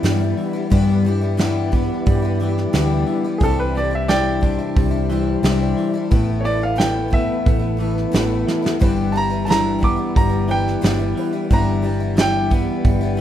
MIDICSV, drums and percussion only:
0, 0, Header, 1, 2, 480
1, 0, Start_track
1, 0, Key_signature, 1, "major"
1, 0, Tempo, 674916
1, 503, Time_signature, 4, 2, 24, 8
1, 9394, End_track
2, 0, Start_track
2, 0, Title_t, "Drums"
2, 24, Note_on_c, 9, 46, 77
2, 30, Note_on_c, 9, 38, 97
2, 95, Note_off_c, 9, 46, 0
2, 101, Note_off_c, 9, 38, 0
2, 264, Note_on_c, 9, 46, 56
2, 335, Note_off_c, 9, 46, 0
2, 508, Note_on_c, 9, 46, 70
2, 510, Note_on_c, 9, 36, 106
2, 580, Note_off_c, 9, 46, 0
2, 581, Note_off_c, 9, 36, 0
2, 749, Note_on_c, 9, 46, 54
2, 820, Note_off_c, 9, 46, 0
2, 986, Note_on_c, 9, 46, 65
2, 992, Note_on_c, 9, 38, 101
2, 1057, Note_off_c, 9, 46, 0
2, 1063, Note_off_c, 9, 38, 0
2, 1227, Note_on_c, 9, 46, 55
2, 1230, Note_on_c, 9, 36, 88
2, 1299, Note_off_c, 9, 46, 0
2, 1301, Note_off_c, 9, 36, 0
2, 1465, Note_on_c, 9, 46, 76
2, 1471, Note_on_c, 9, 36, 111
2, 1536, Note_off_c, 9, 46, 0
2, 1542, Note_off_c, 9, 36, 0
2, 1711, Note_on_c, 9, 46, 51
2, 1782, Note_off_c, 9, 46, 0
2, 1832, Note_on_c, 9, 38, 33
2, 1903, Note_off_c, 9, 38, 0
2, 1942, Note_on_c, 9, 46, 68
2, 1947, Note_on_c, 9, 38, 98
2, 2013, Note_off_c, 9, 46, 0
2, 2019, Note_off_c, 9, 38, 0
2, 2179, Note_on_c, 9, 46, 54
2, 2250, Note_off_c, 9, 46, 0
2, 2418, Note_on_c, 9, 46, 78
2, 2425, Note_on_c, 9, 36, 107
2, 2489, Note_off_c, 9, 46, 0
2, 2496, Note_off_c, 9, 36, 0
2, 2664, Note_on_c, 9, 46, 58
2, 2735, Note_off_c, 9, 46, 0
2, 2905, Note_on_c, 9, 46, 71
2, 2910, Note_on_c, 9, 38, 106
2, 2976, Note_off_c, 9, 46, 0
2, 2981, Note_off_c, 9, 38, 0
2, 3147, Note_on_c, 9, 46, 61
2, 3149, Note_on_c, 9, 36, 82
2, 3218, Note_off_c, 9, 46, 0
2, 3220, Note_off_c, 9, 36, 0
2, 3389, Note_on_c, 9, 36, 112
2, 3389, Note_on_c, 9, 46, 78
2, 3460, Note_off_c, 9, 36, 0
2, 3461, Note_off_c, 9, 46, 0
2, 3628, Note_on_c, 9, 46, 56
2, 3699, Note_off_c, 9, 46, 0
2, 3866, Note_on_c, 9, 46, 73
2, 3872, Note_on_c, 9, 38, 102
2, 3937, Note_off_c, 9, 46, 0
2, 3943, Note_off_c, 9, 38, 0
2, 4109, Note_on_c, 9, 46, 55
2, 4180, Note_off_c, 9, 46, 0
2, 4349, Note_on_c, 9, 46, 72
2, 4350, Note_on_c, 9, 36, 104
2, 4420, Note_off_c, 9, 46, 0
2, 4421, Note_off_c, 9, 36, 0
2, 4593, Note_on_c, 9, 46, 55
2, 4664, Note_off_c, 9, 46, 0
2, 4828, Note_on_c, 9, 46, 69
2, 4834, Note_on_c, 9, 38, 102
2, 4900, Note_off_c, 9, 46, 0
2, 4905, Note_off_c, 9, 38, 0
2, 5069, Note_on_c, 9, 36, 85
2, 5071, Note_on_c, 9, 46, 53
2, 5141, Note_off_c, 9, 36, 0
2, 5142, Note_off_c, 9, 46, 0
2, 5307, Note_on_c, 9, 46, 70
2, 5308, Note_on_c, 9, 36, 114
2, 5378, Note_off_c, 9, 46, 0
2, 5379, Note_off_c, 9, 36, 0
2, 5548, Note_on_c, 9, 46, 51
2, 5619, Note_off_c, 9, 46, 0
2, 5673, Note_on_c, 9, 38, 34
2, 5745, Note_off_c, 9, 38, 0
2, 5788, Note_on_c, 9, 46, 65
2, 5794, Note_on_c, 9, 38, 105
2, 5859, Note_off_c, 9, 46, 0
2, 5865, Note_off_c, 9, 38, 0
2, 6033, Note_on_c, 9, 38, 64
2, 6104, Note_off_c, 9, 38, 0
2, 6160, Note_on_c, 9, 38, 84
2, 6231, Note_off_c, 9, 38, 0
2, 6270, Note_on_c, 9, 36, 106
2, 6270, Note_on_c, 9, 46, 67
2, 6341, Note_off_c, 9, 36, 0
2, 6341, Note_off_c, 9, 46, 0
2, 6514, Note_on_c, 9, 46, 58
2, 6585, Note_off_c, 9, 46, 0
2, 6756, Note_on_c, 9, 46, 78
2, 6762, Note_on_c, 9, 38, 104
2, 6827, Note_off_c, 9, 46, 0
2, 6833, Note_off_c, 9, 38, 0
2, 6990, Note_on_c, 9, 36, 81
2, 6993, Note_on_c, 9, 46, 63
2, 7061, Note_off_c, 9, 36, 0
2, 7064, Note_off_c, 9, 46, 0
2, 7228, Note_on_c, 9, 36, 114
2, 7228, Note_on_c, 9, 46, 86
2, 7299, Note_off_c, 9, 36, 0
2, 7299, Note_off_c, 9, 46, 0
2, 7469, Note_on_c, 9, 46, 56
2, 7540, Note_off_c, 9, 46, 0
2, 7593, Note_on_c, 9, 38, 31
2, 7664, Note_off_c, 9, 38, 0
2, 7706, Note_on_c, 9, 46, 79
2, 7712, Note_on_c, 9, 38, 113
2, 7777, Note_off_c, 9, 46, 0
2, 7783, Note_off_c, 9, 38, 0
2, 7945, Note_on_c, 9, 46, 62
2, 8016, Note_off_c, 9, 46, 0
2, 8182, Note_on_c, 9, 46, 71
2, 8184, Note_on_c, 9, 36, 100
2, 8254, Note_off_c, 9, 46, 0
2, 8255, Note_off_c, 9, 36, 0
2, 8422, Note_on_c, 9, 46, 57
2, 8493, Note_off_c, 9, 46, 0
2, 8657, Note_on_c, 9, 46, 74
2, 8663, Note_on_c, 9, 38, 110
2, 8728, Note_off_c, 9, 46, 0
2, 8734, Note_off_c, 9, 38, 0
2, 8895, Note_on_c, 9, 46, 59
2, 8900, Note_on_c, 9, 36, 88
2, 8967, Note_off_c, 9, 46, 0
2, 8971, Note_off_c, 9, 36, 0
2, 9135, Note_on_c, 9, 46, 72
2, 9138, Note_on_c, 9, 36, 110
2, 9206, Note_off_c, 9, 46, 0
2, 9209, Note_off_c, 9, 36, 0
2, 9394, End_track
0, 0, End_of_file